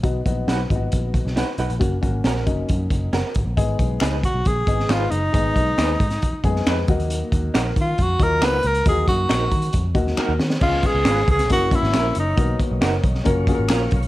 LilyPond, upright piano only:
\new Staff \with { instrumentName = "Upright piano" } { \time 4/4 \key aes \dorian \tempo 4 = 136 <ges ces' ees' ges'>8 <ges ces' ees' ges'>8 r8 <ges ces' ees' f' ges'>4. r4 | <ges bes des' ges'>8 <ges bes des' ges'>8 r8 <ges bes des' ees'>4. r4 | <aes ces' ees' aes'>4. r4 <aes ces' ees' aes'>4 r8 | <aes ces' ees' aes'>4. r4 <aes ces' ees' aes'>4 <ges bes ees' ges'>8~ |
<ges bes ees' ges'>4 r4. <ges bes ees' f'>4 r8 | <ges bes ees' f' ges'>4. r4 <ges bes ees' ges'>4 r8 | <aes ces' des' f' aes'>4. r8 <bes des' fes' ges' bes'>8 <bes des' fes' ges' bes'>4 r8 | <bes ces' ees' ges' bes'>4. r8 <bes des' f' ges' bes'>8 <bes des' f' ges' aes' bes'>4 r8 | }